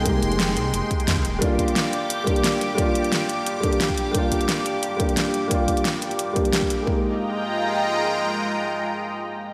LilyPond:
<<
  \new Staff \with { instrumentName = "Analog synth pad" } { \time 4/4 \key f \dorian \tempo 4 = 176 <aes g'' c'''>2.~ <aes g'' c'''>8 <g' d'''>8~ | <g' d'''>1~ | <g' d'''>1~ | <g' d'''>1~ |
<g' d'''>1 | <aes f' ees'' g'' bes''>1~ | <aes f' ees'' g'' bes''>1 | }
  \new Staff \with { instrumentName = "Felt piano" } { \time 4/4 \key f \dorian <aes bes ees' g'>2~ <aes bes ees' g'>8 r4. | <g bes d' f'>2~ <g bes d' f'>8 <g bes d' g'>4. | <g bes d' f'>2~ <g bes d' f'>8 <g bes d' g'>4. | <g bes d' f'>2~ <g bes d' f'>8 <g bes d' g'>4. |
<g bes d' f'>2~ <g bes d' f'>8 <g bes d' g'>4. | <aes bes ees' g'>1~ | <aes bes ees' g'>1 | }
  \new Staff \with { instrumentName = "Detuned saw bass" } { \clef bass \time 4/4 \key f \dorian c,8 f,,4 c,8 f,,16 r8. f,16 c,16 ees,,8 | r1 | r1 | r1 |
r1 | r1 | r1 | }
  \new DrumStaff \with { instrumentName = "Drums" } \drummode { \time 4/4 <hh bd>8 hh16 hh16 <hh sn>8 hh8 hh8 <hh bd>16 hh16 <hh sn>16 bd16 hh8 | <hh bd>8 <hh bd>16 hh16 <hh sn>8 hh8 hh8 <hh bd>16 hh16 <hh sn>8 hh8 | <hh bd>8 hh16 hh16 <hh sn>8 hh8 hh8 <hh bd>16 hh16 <hh sn>16 bd16 hh8 | <hh bd>8 <hh bd>16 hh16 <hh sn>8 hh8 hh8 <hh bd>16 hh16 <hh sn>8 hh8 |
<hh bd>8 <hh bd>16 hh16 <hh sn>8 hh16 hh16 hh8 <hh bd>16 hh16 <hh sn>16 bd16 hh8 | bd4 r4 r4 r4 | r4 r4 r4 r4 | }
>>